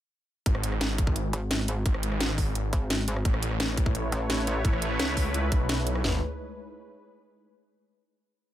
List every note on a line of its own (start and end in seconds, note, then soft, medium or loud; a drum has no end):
0.46 1.32 G#1 loud
0.46 kick loud
0.46 closed hi-hat medium
0.55 cross-stick medium
0.64 closed hi-hat loud
0.72 cross-stick soft
0.81 snare loud
0.81 closed hi-hat medium
0.98 kick loud
0.98 closed hi-hat medium
1.07 kick loud
1.16 closed hi-hat medium
1.33 1.84 G#1 loud
1.33 closed hi-hat medium
1.51 snare loud
1.51 closed hi-hat medium
1.59 cross-stick soft
1.68 closed hi-hat medium
1.86 2.71 G#1 medium
1.86 kick loud
1.86 closed hi-hat medium
1.94 cross-stick medium
2.03 closed hi-hat loud
2.12 cross-stick soft
2.21 snare loud
2.21 closed hi-hat medium
2.29 cross-stick soft
2.38 kick medium
2.38 open hi-hat medium
2.55 closed hi-hat medium
2.73 3.24 G#1 loud
2.73 kick loud
2.73 closed hi-hat medium
2.90 snare loud
2.90 closed hi-hat medium
3.08 closed hi-hat loud
3.16 cross-stick soft
3.25 4.11 A1 loud
3.25 6.01 A3 medium
3.25 6.01 E4 medium
3.25 6.01 B4 medium
3.25 6.01 C#5 medium
3.25 kick loud
3.25 closed hi-hat medium
3.34 cross-stick medium
3.43 closed hi-hat loud
3.51 cross-stick soft
3.60 snare loud
3.60 closed hi-hat medium
3.77 kick loud
3.77 closed hi-hat medium
3.86 kick loud
3.95 closed hi-hat medium
4.12 4.63 A1 medium
4.12 closed hi-hat medium
4.30 snare loud
4.30 closed hi-hat medium
4.39 cross-stick soft
4.47 closed hi-hat medium
4.65 4.98 A1 loud
4.65 kick loud
4.65 closed hi-hat medium
4.73 cross-stick medium
4.82 closed hi-hat medium
4.91 cross-stick soft
5.00 5.50 C#2 loud
5.00 snare loud
5.00 closed hi-hat medium
5.08 cross-stick soft
5.17 kick medium
5.17 open hi-hat medium
5.34 closed hi-hat medium
5.52 6.03 B1 loud
5.52 kick loud
5.52 closed hi-hat medium
5.69 snare loud
5.69 closed hi-hat medium
5.87 closed hi-hat medium
5.95 cross-stick soft
6.04 6.20 G#1 loud
6.04 6.20 G#3 medium
6.04 6.20 D#4 medium
6.04 6.20 G#4 medium
6.04 6.20 B4 medium
6.04 snare loud
6.04 floor tom loud